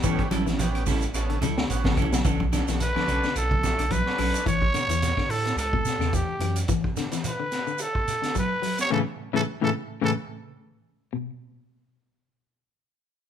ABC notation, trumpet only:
X:1
M:4/4
L:1/16
Q:"Swing 16ths" 1/4=108
K:Amix
V:1 name="Trumpet"
z16 | z4 B4 A4 B4 | c6 A2 A4 G3 z | z4 B4 A4 B3 c |
A z2 A z A z2 A z6 z | z16 |]